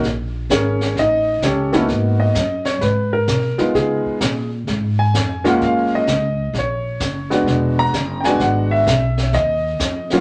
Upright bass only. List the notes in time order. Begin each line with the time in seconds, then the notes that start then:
0.03 A#1
0.49 G#1
0.96 A1
1.42 C#2
1.88 G#2
2.35 F#2
2.82 G#2
3.28 B2
3.59 muted upright bass stroke
3.74 C#3
4.06 muted upright bass stroke
4.21 A#2
4.68 G#2
5.14 F2
5.61 F#2
6.07 C#2
6.53 A#1
7.00 F#1
7.46 E1
7.94 F#1
8.40 G#1
8.87 B1
9.33 D#2
9.80 F2